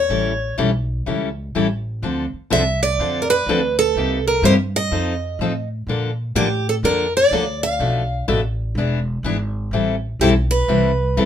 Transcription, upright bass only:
0.09 0.56 A1 medium
0.58 1.05 B1 medium
1.07 1.53 C#2 medium
1.55 2.01 A1 medium
2.02 2.31 D2 medium
2.33 muted upright bass stroke soft
2.51 2.97 C2 medium
2.99 3.45 F2 medium
3.46 3.93 D2 medium
3.95 4.42 C2 medium
4.42 4.89 G2 medium
4.91 5.38 F2 medium
5.39 5.86 A2 medium
5.87 6.34 A#2 medium
6.35 6.82 A2 medium
6.83 7.30 F2 medium
7.31 7.78 D2 medium
7.79 8.26 B1 medium
8.28 8.75 A1 medium
8.75 9.22 E1 medium
9.23 9.70 G#1 medium
9.71 10.18 A1 medium
10.19 10.67 B1 medium
10.68 11.15 C2 loud
11.17 11.25 E2 medium

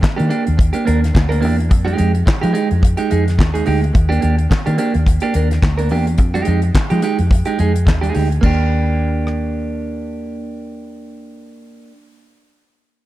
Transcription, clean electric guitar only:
0.01 muted clean electric guitar stroke soft
0.16 0.28 A#3 medium
0.16 0.28 D4 medium
0.16 0.28 G4 medium
0.29 0.46 A#3 medium
0.29 0.45 D4 loud
0.29 0.44 G4 loud
0.45 muted clean electric guitar stroke medium
0.57 muted clean electric guitar stroke soft
0.73 0.84 A#3 medium
0.73 0.84 D4 medium
0.73 0.84 G4 medium
0.85 1.02 A#3 medium
0.85 1.01 D4 loud
0.85 1.01 A#4 medium
1.01 muted clean electric guitar stroke soft
1.14 muted clean electric guitar stroke soft
1.29 1.39 A#3 medium
1.29 1.40 D4 medium
1.29 1.40 A#4 medium
1.41 1.58 A#3 medium
1.41 1.57 D4 medium
1.41 1.56 G4 medium
1.57 muted clean electric guitar stroke soft
1.70 muted clean electric guitar stroke soft
1.85 1.96 G#3 medium
1.85 1.96 D#4 medium
1.85 1.97 G4 medium
1.97 2.11 G#3 medium
1.97 2.11 D#4 medium
1.97 2.11 G4 medium
2.14 muted clean electric guitar stroke soft
2.26 muted clean electric guitar stroke soft
2.41 2.52 G#3 medium
2.41 2.53 D#4 medium
2.41 2.52 G4 medium
2.53 2.70 G#3 medium
2.53 2.69 D#4 medium
2.53 2.69 G4 loud
2.70 muted clean electric guitar stroke soft
2.82 muted clean electric guitar stroke soft
2.97 3.09 G#3 medium
2.97 3.10 D#4 medium
2.97 3.11 G4 medium
3.10 3.23 G#3 medium
3.10 3.24 D#4 medium
3.10 3.24 G#4 medium
3.26 muted clean electric guitar stroke soft
3.38 muted clean electric guitar stroke soft
3.54 3.64 G#3 soft
3.54 3.65 D#4 medium
3.54 3.64 G#4 medium
3.66 3.82 G#3 medium
3.66 3.82 D#4 loud
3.66 3.80 G4 medium
3.81 muted clean electric guitar stroke soft
3.94 muted clean electric guitar stroke soft
4.09 4.20 A#3 medium
4.09 4.20 D4 medium
4.09 4.21 G4 medium
4.21 4.34 A#3 medium
4.21 4.35 D4 medium
4.21 4.35 G4 medium
4.37 muted clean electric guitar stroke soft
4.50 muted clean electric guitar stroke soft
4.66 4.77 A#3 medium
4.66 4.76 D4 medium
4.66 4.76 G4 medium
4.78 4.94 A#3 loud
4.78 4.94 D4 loud
4.78 4.93 G4 loud
4.94 muted clean electric guitar stroke soft
5.07 muted clean electric guitar stroke soft
5.22 5.33 A#3 medium
5.22 5.34 D4 medium
5.22 5.35 G4 medium
5.34 5.47 A#3 medium
5.34 5.48 D4 medium
5.34 5.48 A#4 medium
5.50 muted clean electric guitar stroke soft
5.63 muted clean electric guitar stroke soft
5.78 5.89 A#3 medium
5.78 5.88 D4 medium
5.78 5.88 A#4 medium
5.91 6.07 A#3 medium
5.91 6.07 D4 medium
5.91 6.06 G4 medium
6.07 muted clean electric guitar stroke soft
6.19 muted clean electric guitar stroke soft
6.34 6.46 G#3 medium
6.34 6.46 D#4 medium
6.34 6.47 G4 medium
6.47 6.60 G#3 medium
6.47 6.60 D#4 medium
6.47 6.60 G4 medium
6.75 muted clean electric guitar stroke soft
6.90 7.01 G#3 medium
6.90 7.01 D#4 medium
6.90 7.00 G4 medium
7.02 7.19 G#3 medium
7.02 7.18 D#4 loud
7.02 7.17 G4 loud
7.19 muted clean electric guitar stroke soft
7.31 muted clean electric guitar stroke soft
7.46 7.57 G#3 medium
7.46 7.58 D#4 medium
7.46 7.59 G4 medium
7.59 7.71 G#3 medium
7.59 7.72 D#4 medium
7.59 7.72 G#4 medium
7.74 muted clean electric guitar stroke medium
7.86 muted clean electric guitar stroke soft
8.01 8.12 G#3 medium
8.01 8.13 D#4 medium
8.01 8.15 G#4 medium
8.14 8.27 G#3 medium
8.14 8.27 D#4 medium
8.14 8.28 G4 medium
8.30 muted clean electric guitar stroke soft
8.41 11.91 A#3 medium
8.41 11.94 D4 medium
8.46 11.96 G4 loud

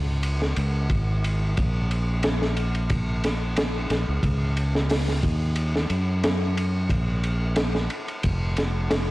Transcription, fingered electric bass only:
0.00 0.54 C#2 medium
0.57 0.87 C#2 loud
0.90 1.54 G#1 medium
1.58 3.88 A#1 medium
3.90 4.06 A#1 medium
4.09 4.22 C#2 medium
4.23 5.20 C#2 loud
5.23 5.87 D#2 medium
5.90 6.87 F#2 medium
6.90 7.87 A#1 medium
8.24 9.11 F1 loud

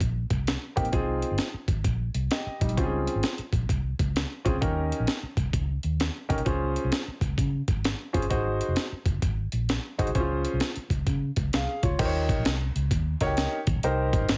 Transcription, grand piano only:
0.76 0.85 A#3 medium
0.76 0.85 C4 medium
0.76 0.86 D#4 medium
0.76 0.86 G4 medium
0.92 1.45 C4 medium
0.92 1.45 D#4 medium
0.92 1.45 F4 medium
0.92 1.45 G#4 medium
2.31 2.60 G4 soft
2.31 2.59 D#5 medium
2.61 3.05 G3 medium
2.61 3.05 D#4 medium
2.77 3.30 C4 medium
2.77 3.30 C#4 medium
2.77 3.30 F4 medium
2.77 2.85 G4 medium
2.84 3.33 G#4 medium
4.45 4.54 C4 medium
4.45 4.54 C#4 medium
4.45 4.54 F4 medium
4.45 4.54 G#4 medium
4.61 5.14 C#4 medium
4.61 5.14 D#4 medium
4.61 5.14 G4 medium
4.61 5.14 A#4 medium
6.29 6.38 C#4 medium
6.29 6.38 D#4 medium
6.29 6.39 G4 medium
6.29 6.39 A#4 medium
6.45 6.98 C#4 medium
6.45 6.98 F4 medium
6.45 6.98 G#4 medium
6.45 6.99 C5 medium
8.13 8.23 C#4 medium
8.13 8.23 F4 medium
8.13 8.23 G#4 medium
8.13 8.23 C5 medium
8.30 8.83 D#4 medium
8.30 8.82 F#4 medium
8.30 8.83 G#4 medium
8.30 8.83 C5 medium
9.98 10.08 D#4 medium
9.98 10.08 F#4 medium
9.98 10.08 G#4 medium
9.98 10.08 C5 medium
10.15 10.67 C#4 medium
10.15 10.22 E4 medium
10.15 10.67 G#4 medium
10.15 10.68 C5 medium
10.20 10.70 F4 medium
11.54 11.82 G#4 soft
11.54 11.82 F5 medium
11.83 12.27 F4 soft
11.83 12.04 C#5 medium
11.99 12.51 D#4 medium
11.99 12.51 G4 medium
11.99 12.52 A#4 medium
11.99 12.06 C5 medium
12.05 12.55 C#5 medium
13.21 13.57 D#4 medium
13.21 13.25 F#4 medium
13.21 13.57 A#4 medium
13.21 13.57 C#5 medium
13.27 13.60 G4 medium
13.84 14.36 D#4 medium
13.84 14.36 G4 medium
13.84 14.36 A#4 medium
13.84 14.36 C5 medium

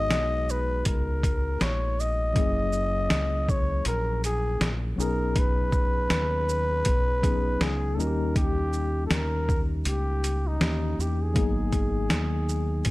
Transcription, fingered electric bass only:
0.00 0.11 G#1 loud
0.11 0.82 B1 loud
0.86 1.57 C#2 medium
1.61 2.32 A#1 medium
2.36 3.07 F#1 medium
3.11 3.82 C#2 medium
3.86 4.57 A#1 medium
4.61 4.96 A#1 medium
4.98 6.07 B1 medium
6.11 6.82 D#2 medium
6.86 7.57 B1 medium
7.61 7.96 C#2 medium
7.98 9.07 D#2 medium
9.11 9.82 D#2 medium
9.86 10.57 C#2 medium
10.61 10.96 D#2 loud
10.99 11.34 E2 medium
11.36 12.07 G#1 medium
12.11 12.82 D#2 medium
12.86 12.91 B1 medium

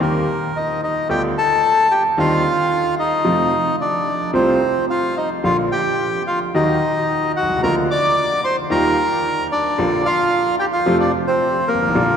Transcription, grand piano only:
0.00 0.23 D#2 medium
0.00 0.23 D#3 medium
0.00 0.23 G3 medium
0.00 0.23 A#3 medium
0.00 0.24 G4 medium
1.09 1.32 D2 medium
1.09 1.32 D3 medium
1.09 1.32 G3 medium
1.09 1.32 B3 medium
1.09 1.32 F4 medium
2.18 2.40 D#2 medium
2.18 2.40 D3 medium
2.18 2.40 D#3 medium
2.18 2.40 G3 medium
2.18 2.41 C4 medium
2.18 2.41 D#4 medium
3.24 3.48 F2 medium
3.24 3.47 C3 medium
3.24 3.48 F3 medium
3.24 3.48 A3 medium
3.24 3.48 F4 medium
4.33 4.57 C2 medium
4.33 4.57 C3 medium
4.33 4.57 F3 medium
4.33 4.57 A3 medium
4.33 4.57 F4 medium
5.44 5.67 A#1 medium
5.44 5.67 A#2 medium
5.44 5.67 D3 medium
5.44 5.67 F3 medium
5.44 5.67 A#3 medium
5.44 5.67 F4 medium
6.54 6.77 D#2 medium
6.54 6.77 D#3 medium
6.54 6.77 F#3 medium
6.54 6.77 A#3 medium
6.54 6.77 F#4 medium
7.42 7.49 B1 medium
7.50 7.56 C2 medium
7.57 7.63 C#2 medium
7.63 7.86 D2 medium
7.63 7.86 D3 medium
7.63 7.86 F3 medium
7.63 7.86 A#3 medium
7.63 7.86 F4 medium
8.70 8.93 D#2 medium
8.70 8.93 D#3 medium
8.70 8.93 G3 medium
8.70 8.93 A#3 medium
8.70 8.93 F4 medium
9.78 10.01 A#1 medium
9.78 10.01 A#2 medium
9.78 10.01 D3 medium
9.78 10.01 F3 medium
9.78 10.01 A#3 medium
9.78 10.01 F4 medium
10.86 11.09 F2 medium
10.86 11.09 C3 medium
10.86 11.09 F3 loud
10.86 11.09 A3 medium
10.86 11.09 F4 medium
11.74 11.81 G1 medium
11.81 11.88 G#1 medium
11.88 11.94 A1 medium
11.95 12.17 A#1 medium
11.95 12.17 A#2 medium
11.95 12.17 D3 medium
11.95 12.17 G3 medium
11.95 12.17 A#3 medium
11.95 12.17 F4 medium

